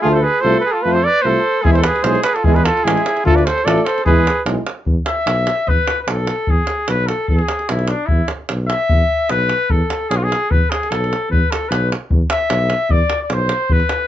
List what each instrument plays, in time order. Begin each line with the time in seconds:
0.00 euphonium A3, flugelhorn F4, french horn F4, trumpet G#4
0.05 tuba D2
0.12 flugelhorn A4, trumpet C5
0.21 flugelhorn G#4, trumpet B4
0.41 tuba C2, euphonium A3, french horn F4, flugelhorn A4, trumpet C5
0.60 trumpet B4
0.66 flugelhorn G#4
0.71 flugelhorn F4, trumpet A4
0.82 tuba F2, euphonium A3, french horn F4, flugelhorn F4, trumpet B4
0.93 flugelhorn A4, trumpet C5
1.04 flugelhorn B4, trumpet D5
1.22 tuba C2, euphonium A3, french horn F4, trumpet C5
1.26 flugelhorn A4
1.62 tuba E2, euphonium G#3, flugelhorn E4, french horn E4, trumpet G#4, davul low
1.73 flugelhorn A4, trumpet C5, davul high
1.82 trumpet B4, davul high
1.87 flugelhorn G#4
1.96 davul high
2.03 tuba B1, euphonium G#3, french horn E4, flugelhorn G#4, trumpet C5, davul high
2.15 davul high
2.23 flugelhorn G#4, trumpet B4, davul high
2.35 flugelhorn F4, trumpet A4, davul high
2.44 tuba E2, euphonium G#3, french horn E4, flugelhorn E4, trumpet G#4, davul low
2.54 flugelhorn G#4, trumpet B4, davul high
2.64 flugelhorn F4, trumpet A4, davul high
2.77 davul high
2.83 tuba A1, euphonium G#3, french horn E4, flugelhorn E4, trumpet G#4
2.88 davul high
2.97 davul high
3.06 davul high
3.17 davul high
3.24 tuba D2, euphonium A3, flugelhorn F4, french horn F4, trumpet A4, davul low
3.35 flugelhorn B4, trumpet D5, davul high
3.46 flugelhorn A4, trumpet C5, davul high
3.58 davul high
3.62 tuba A1, euphonium A3, french horn F4, flugelhorn A4, trumpet D5
3.68 davul high
3.78 davul high
3.82 flugelhorn A4, trumpet C5
3.87 davul high
3.98 davul high
4.05 tuba E2, euphonium G#3, french horn E4, flugelhorn G#4, trumpet B4, davul low
4.27 davul high
4.46 tuba B1, euphonium G#3, french horn E4, davul high
4.67 davul high
4.86 tuba E2, davul low
5.06 flugelhorn E5, davul high
5.26 tuba B1, davul high
5.47 davul high
5.67 tuba E2, flugelhorn B4, davul low
5.87 davul high
6.03 flugelhorn B4
6.08 tuba B1, flugelhorn A4, davul high
6.27 davul high
6.47 tuba E2, flugelhorn G#4, davul low
6.67 davul high
6.88 tuba B1, flugelhorn B4, davul high
7.07 flugelhorn A4, davul high
7.28 tuba E2, flugelhorn A4, davul low
7.39 flugelhorn G#4, davul high
7.49 davul high
7.59 davul high
7.69 tuba B1, flugelhorn E4, davul high
7.79 davul high
7.88 flugelhorn D4, davul high
8.06 flugelhorn E4, davul low
8.11 tuba E2
8.28 davul high
8.49 tuba B1, davul high
8.68 flugelhorn E5, davul high
8.89 tuba E2, davul low
9.29 tuba B1, flugelhorn B4, davul high
9.49 davul high
9.70 tuba E2, flugelhorn A4, davul low
9.90 davul high
10.09 tuba B1, flugelhorn G#4, davul high
10.17 flugelhorn F4
10.24 flugelhorn G#4
10.32 davul high
10.51 tuba E2, flugelhorn B4, davul low
10.70 flugelhorn G#4, davul high
10.83 davul high
10.90 tuba B1, flugelhorn A4, davul high
11.04 davul high
11.13 davul high
11.31 tuba E2, flugelhorn B4, davul low
11.51 flugelhorn A4, davul high
11.69 tuba B1, flugelhorn B4, davul high
11.92 davul high
12.11 tuba E2, davul low
12.30 flugelhorn E5, davul high
12.50 tuba B1, davul high
12.70 davul high
12.90 tuba E2, flugelhorn D5, davul low
13.10 davul high
13.23 flugelhorn D5
13.30 tuba B1, flugelhorn C5, davul high
13.49 davul high
13.69 tuba E2, flugelhorn B4, davul low
13.80 davul high
13.89 davul high